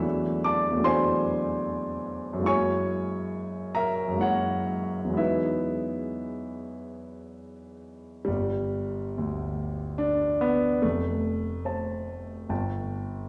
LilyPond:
<<
  \new Staff \with { instrumentName = "Grand piano" } { \time 3/4 \key e \major \tempo 4 = 71 <e'' b'' e'''>8 <d'' a'' d'''>8 <c'' gis'' c'''>4 r4 | <cis'' gis'' cis'''>4. <ais' e'' ais''>8 <fis' cis'' fis''>4 | <e' b' e''>2~ <e' b' e''>8 r8 | \key g \major g2 d'8 b8 |
a2~ a8 r8 | }
  \new Staff \with { instrumentName = "Grand piano" } { \clef bass \time 3/4 \key e \major <e, fis a d' e'>4 <e, fis a d' e'>2 | <fis, fis gis ais e'>2 <fis, fis gis ais e'>4 | <e, fis gis b dis'>2. | \key g \major g,,4 d,2 |
f,,4 <c'' a''>4 <g,, g'' a''>4 | }
>>